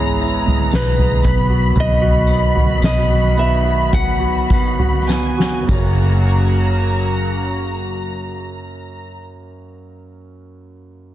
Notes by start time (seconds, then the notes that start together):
Already playing: G#1 E3 G#3 B3 E4 G#4 C#5 A#5
0.21 E4, tambourine
0.46 G#3, floor tom
0.71 B1 G#4 B4, snare, tambourine
0.98 G#3, floor tom
1.23 B1 D#3 F#3 B3 F#4 B5, kick, floor tom, tambourine
1.49 F#4
1.75 B1 B3, floor tom, tambourine
1.80 D#5
2.02 F#4
2.27 B3, tambourine
2.55 F#4, floor tom
2.82 B1 B3 D#5, snare, tambourine
3.09 F#4
3.37 B3 E5, tambourine
3.65 F#4
3.92 B3 F#5, kick, floor tom, tambourine
4.20 F#4
4.49 B3, kick, tambourine
4.79 F#4, floor tom
5.08 B3 G#5, snare, tambourine
5.38 F#4, snare
5.62 F#2 C#3
5.67 F#1 C#3 F#3 A#3 C#4 F#4 A#5, kick, crash, tambourine
5.72 F#4 C#5